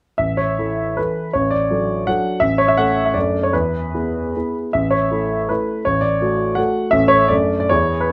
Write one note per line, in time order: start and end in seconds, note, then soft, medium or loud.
0.18 0.57 A1 soft
0.18 0.37 E5 medium
0.37 0.97 C#5 medium
0.59 0.94 E3 soft
0.59 0.94 E4 soft
0.59 0.94 A4 soft
0.97 1.30 E3 soft
0.97 1.30 E4 soft
0.97 1.30 A4 soft
0.97 1.33 B4 medium
1.33 1.70 A1 soft
1.33 1.51 C#5 medium
1.51 2.07 D5 medium
1.71 2.04 F#3 soft
1.71 2.04 D4 soft
1.71 2.04 A4 soft
2.07 2.39 F#3 soft
2.07 2.39 D4 soft
2.07 2.39 A4 soft
2.07 2.42 F#5 medium
2.40 2.76 A1 soft
2.40 2.58 E5 medium
2.58 2.68 C#5 medium
2.68 2.77 E5 medium
2.77 3.12 A3 soft
2.77 3.12 C#4 soft
2.77 3.12 A4 soft
2.77 3.06 F#5 medium
3.05 3.15 E5 medium
3.14 3.52 F#2 soft
3.14 3.49 A3 soft
3.14 3.49 D4 soft
3.14 3.50 A4 soft
3.14 3.43 D5 medium
3.43 3.53 C#5 medium
3.53 3.92 E2 soft
3.53 4.54 B4 medium
3.94 4.31 B3 soft
3.94 4.31 E4 soft
3.94 4.31 G#4 soft
4.35 4.70 B3 soft
4.35 4.71 E4 soft
4.35 4.71 G#4 soft
4.73 5.10 A1 soft
4.73 4.92 E5 medium
4.91 5.49 C#5 medium
5.11 5.46 A3 soft
5.11 5.46 E4 soft
5.11 5.46 A4 soft
5.49 5.82 A3 soft
5.49 5.82 E4 soft
5.49 5.82 A4 soft
5.49 5.85 B4 medium
5.85 6.20 A1 soft
5.85 6.02 C#5 medium
6.01 6.57 D5 medium
6.21 6.54 A3 soft
6.21 6.55 F#4 soft
6.21 6.54 A4 soft
6.55 6.89 A3 soft
6.55 6.89 F#4 soft
6.55 6.90 A4 soft
6.55 6.92 F#5 medium
6.91 7.29 A1 medium
6.91 7.26 A3 soft
6.91 7.27 C#4 soft
6.91 7.27 A4 soft
6.91 7.10 E5 medium
7.08 7.29 C#5 medium
7.28 7.69 F#2 soft
7.28 7.66 A3 soft
7.28 7.67 D4 soft
7.28 7.67 A4 soft
7.28 7.58 D5 medium
7.60 7.71 D5 medium
7.69 8.10 E2 soft
7.69 8.07 B3 soft
7.69 8.07 E4 soft
7.69 8.08 G#4 soft
7.69 8.00 C#5 medium
8.01 8.11 B4 medium